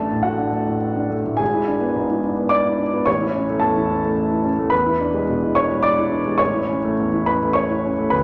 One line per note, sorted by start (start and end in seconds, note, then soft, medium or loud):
0.00 1.37 A1 soft
0.00 0.20 A3 soft
0.00 0.39 D4 soft
0.00 0.21 A4 soft
0.00 0.25 A5 medium
0.12 0.34 A2 soft
0.23 0.48 A3 soft
0.23 1.07 F#4 soft
0.23 1.11 F#5 medium
0.39 0.62 D4 soft
0.52 0.77 A3 soft
0.68 1.15 A2 soft
0.96 1.20 D4 soft
1.10 1.34 A3 soft
1.26 1.40 A2 soft
1.37 3.02 G#1 soft
1.37 2.46 G#4 soft
1.37 2.50 G#5 medium
1.54 1.76 E4 soft
1.68 1.90 D4 soft
1.81 2.04 B3 soft
1.96 2.18 G#2 soft
2.11 2.33 E4 soft
2.24 2.46 D4 soft
2.38 2.82 B3 soft
2.49 3.03 D5 medium
2.49 3.06 D6 medium
2.65 2.88 E4 soft
2.78 3.01 D4 soft
2.94 3.07 B3 soft
3.06 4.68 A1 soft
3.06 3.58 C#5 medium
3.06 3.61 C#6 medium
3.22 3.43 E4 soft
3.35 3.57 C#4 soft
3.49 3.71 A3 soft
3.60 3.84 E2 soft
3.60 4.39 A4 soft
3.60 4.43 A5 medium
3.77 3.98 E4 soft
3.91 4.12 C#4 soft
4.05 4.48 A3 soft
4.31 4.52 E4 soft
4.44 4.66 C#4 soft
4.59 4.72 A3 soft
4.70 6.36 E2 soft
4.70 5.52 B4 medium
4.70 5.55 B5 medium
4.86 5.08 E4 soft
5.01 5.23 D4 soft
5.14 5.36 G#3 soft
5.29 5.51 B2 soft
5.43 5.65 E4 soft
5.55 5.79 D4 soft
5.55 5.82 C#5 medium
5.55 5.83 C#6 medium
5.72 6.15 G#3 soft
5.83 6.36 D5 medium
5.83 6.39 D6 medium
5.99 6.20 E4 soft
6.12 6.34 D4 soft
6.27 6.41 G#3 soft
6.38 8.10 A1 soft
6.38 7.23 C#5 medium
6.38 7.26 C#6 medium
6.54 6.78 E4 soft
6.69 6.93 C#4 soft
6.84 7.07 A3 soft
6.99 7.22 E2 soft
7.14 7.36 E4 soft
7.26 7.51 C#4 soft
7.26 7.54 B4 soft
7.26 7.55 B5 medium
7.42 7.88 A3 soft
7.53 8.09 C#5 medium
7.53 8.12 C#6 medium
7.71 7.93 E4 soft
7.85 8.08 C#4 soft
7.99 8.13 A3 soft
8.10 8.23 D2 soft
8.10 8.23 B4 medium
8.10 8.23 B5 medium